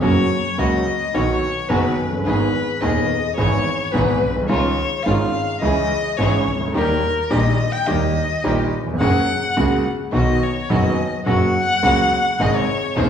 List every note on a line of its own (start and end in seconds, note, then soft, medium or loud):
0.02 0.26 F#1 medium
0.02 0.26 F#2 medium
0.02 0.26 C#3 medium
0.02 0.26 F#3 medium
0.02 0.26 A#3 medium
0.02 0.26 C#4 medium
0.02 0.26 F#4 medium
0.02 0.61 C#5 medium
0.58 0.82 C#2 medium
0.58 0.82 C#3 medium
0.58 0.82 F#3 medium
0.58 0.82 A#3 medium
0.58 0.82 C#4 medium
0.58 0.82 F#4 medium
0.58 1.16 D#5 medium
1.14 1.38 B1 medium
1.14 1.38 B2 medium
1.14 1.38 D#3 medium
1.14 1.38 F#3 medium
1.14 1.38 B3 medium
1.14 1.38 D#4 medium
1.14 1.38 F#4 medium
1.14 1.70 C#5 medium
1.69 1.94 F#1 medium
1.69 1.94 F#2 medium
1.69 1.94 D#3 medium
1.69 1.94 F#3 medium
1.69 1.94 B3 medium
1.69 1.94 D#4 medium
1.69 1.94 F#4 medium
1.69 2.12 B4 medium
1.98 2.26 F#1 soft
2.05 2.12 F1 soft
2.12 2.20 F#1 soft
2.19 2.26 G1 medium
2.25 2.50 G#1 medium
2.25 2.50 G#2 medium
2.25 2.50 D#3 medium
2.25 2.50 G#3 medium
2.25 2.50 B3 medium
2.25 2.50 D#4 medium
2.25 2.50 G#4 medium
2.25 2.82 B4 medium
2.81 3.06 D#1 medium
2.81 3.06 D#2 medium
2.81 3.06 D#3 medium
2.81 3.06 G#3 medium
2.81 3.06 B3 medium
2.81 3.06 D#4 medium
2.81 3.06 G#4 medium
2.81 3.36 D#5 medium
3.36 3.62 G#1 medium
3.36 3.62 G#2 medium
3.36 3.62 E3 medium
3.36 3.62 G#3 medium
3.36 3.62 B3 medium
3.36 3.62 E4 medium
3.36 3.62 G#4 medium
3.36 3.93 C#5 medium
3.92 4.18 G#1 medium
3.92 4.18 G#2 medium
3.92 4.17 E3 medium
3.92 4.18 G#3 medium
3.92 4.18 B3 medium
3.92 4.18 E4 medium
3.92 4.18 G#4 medium
3.92 4.35 B4 medium
4.23 4.50 B1 medium
4.29 4.36 A#1 soft
4.36 4.43 B1 medium
4.42 4.50 C2 medium
4.48 4.74 C#2 medium
4.48 4.74 C#3 medium
4.48 4.73 D#3 medium
4.48 4.74 G#3 medium
4.48 4.74 C#4 medium
4.48 4.74 D#4 medium
4.48 4.74 F4 medium
4.48 5.05 C#5 medium
5.03 5.30 G#1 medium
5.03 5.30 G#2 medium
5.03 5.30 D#3 medium
5.03 5.30 G#3 medium
5.03 5.30 C#4 medium
5.03 5.30 D#4 medium
5.03 5.30 F4 medium
5.03 5.60 F5 medium
5.61 5.86 C#2 medium
5.61 5.86 C#3 medium
5.61 5.86 E3 medium
5.61 5.86 G#3 medium
5.61 5.86 C#4 medium
5.61 5.86 E4 medium
5.61 5.86 G#4 medium
5.61 6.19 D#5 medium
6.17 6.43 G#1 medium
6.17 6.43 G#2 medium
6.17 6.42 E3 medium
6.17 6.42 G#3 medium
6.17 6.43 C#4 medium
6.17 6.43 E4 medium
6.17 6.43 G#4 medium
6.17 6.60 C#5 medium
6.48 6.75 C#2 soft
6.53 6.61 C2 soft
6.60 6.68 C#2 medium
6.67 6.75 D2 medium
6.74 6.99 D#2 medium
6.74 6.99 D#3 medium
6.74 6.99 G3 medium
6.74 6.99 A#3 medium
6.74 6.99 D#4 medium
6.74 6.99 G4 medium
6.74 7.32 A#4 medium
7.30 7.55 A#1 medium
7.30 7.55 A#2 medium
7.30 7.55 D#3 medium
7.30 7.55 G3 medium
7.30 7.55 A#3 medium
7.30 7.56 D#4 medium
7.30 7.55 G4 medium
7.30 7.74 D#5 medium
7.72 7.88 G5 medium
7.86 8.12 D#2 medium
7.86 8.12 D#3 medium
7.86 8.12 G3 medium
7.86 8.12 A#3 medium
7.86 8.12 D#4 medium
7.86 8.12 G4 medium
7.86 8.72 D#5 medium
8.44 8.68 A#1 medium
8.44 8.68 A#2 medium
8.44 8.68 D#3 medium
8.44 8.68 G3 medium
8.44 8.68 A#3 medium
8.44 8.68 D#4 medium
8.44 8.68 G4 medium
8.44 8.69 G4 medium
8.80 8.87 D#2 soft
8.87 8.94 E2 medium
8.93 9.01 F2 medium
9.00 9.25 F#1 medium
9.00 9.24 F#2 medium
9.00 9.25 C#3 medium
9.00 9.25 F#3 medium
9.00 9.24 G#3 medium
9.00 9.25 A#3 medium
9.00 9.25 F#4 medium
9.00 9.26 G#4 medium
9.00 9.81 F#5 loud
9.57 9.81 C#2 medium
9.57 9.82 C#2 medium
9.57 9.81 C#3 medium
9.57 9.81 G#3 medium
9.57 9.81 A#3 medium
9.57 9.82 A#3 medium
9.57 9.81 F#4 medium
9.57 9.82 F#4 medium
9.57 9.82 G#4 medium
10.12 10.37 B1 medium
10.12 10.38 B1 medium
10.12 10.37 B2 medium
10.12 10.37 D#3 medium
10.12 10.37 F#3 medium
10.12 10.37 B3 medium
10.12 10.38 B3 medium
10.12 10.38 D#4 medium
10.12 10.37 F#4 medium
10.12 10.38 F#4 medium
10.12 10.45 D#5 medium
10.43 10.73 C#5 medium
10.70 10.94 F#1 medium
10.70 10.94 F#2 medium
10.70 10.94 D#3 medium
10.70 10.94 F#3 medium
10.70 10.94 B3 medium
10.70 10.94 D#4 medium
10.70 10.94 F#4 medium
10.70 11.14 D#5 medium
11.26 11.51 F#1 medium
11.26 11.51 F#2 medium
11.26 11.50 C#3 medium
11.26 11.51 F#3 medium
11.26 11.51 A#3 medium
11.26 11.51 C#4 medium
11.26 11.51 F#4 medium
11.26 12.43 F#5 medium
11.83 12.07 C#2 medium
11.83 12.07 C#3 medium
11.83 12.07 F#3 medium
11.83 12.07 A#3 medium
11.83 12.07 C#4 medium
11.83 12.07 F#4 medium
12.39 12.64 G#1 medium
12.39 12.64 G#2 medium
12.39 12.64 C3 medium
12.39 12.64 D#3 medium
12.39 12.64 G#3 medium
12.39 12.63 C4 medium
12.39 12.64 D#4 medium
12.39 12.64 G#4 medium
12.39 12.57 D#5 medium
12.56 12.99 C#5 medium
12.95 13.10 D#1 medium
12.95 13.10 D#2 medium
12.95 13.10 C3 medium
12.95 13.10 D#3 medium
12.95 13.10 G#3 medium
12.95 13.10 C4 medium
12.95 13.10 D#4 medium
12.95 13.10 G#4 medium
12.95 13.10 C5 medium